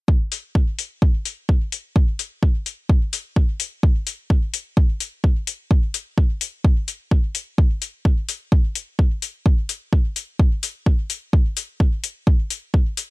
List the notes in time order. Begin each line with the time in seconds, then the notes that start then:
0.08 kick
0.32 open hi-hat
0.55 kick
0.79 open hi-hat
1.02 kick
1.25 open hi-hat
1.49 kick
1.72 open hi-hat
1.96 kick
2.19 open hi-hat
2.43 kick
2.66 open hi-hat
2.89 kick
3.13 open hi-hat
3.36 kick
3.60 open hi-hat
3.83 kick
4.07 open hi-hat
4.30 kick
4.54 open hi-hat
4.77 kick
5.00 open hi-hat
5.24 kick
5.47 open hi-hat
5.71 kick
5.94 open hi-hat
6.18 kick
6.41 open hi-hat
6.64 kick
6.88 open hi-hat
7.11 kick
7.35 open hi-hat
7.58 kick
7.82 open hi-hat
8.05 kick
8.29 open hi-hat
8.52 kick
8.75 open hi-hat
8.99 kick
9.22 open hi-hat
9.46 kick
9.69 open hi-hat
9.93 kick
10.16 open hi-hat
10.39 kick
10.63 open hi-hat
10.86 kick
11.10 open hi-hat
11.33 kick
11.57 open hi-hat
11.80 kick
12.04 open hi-hat
12.27 kick
12.50 open hi-hat
12.74 kick
12.97 open hi-hat